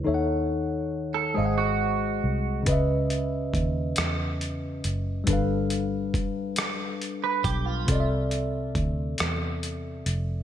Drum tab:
HH |------|xxxxxx|xxxxxx|xxxxxx|
SD |------|---r--|---r--|---r--|
BD |------|o-o---|o-o--o|o-o---|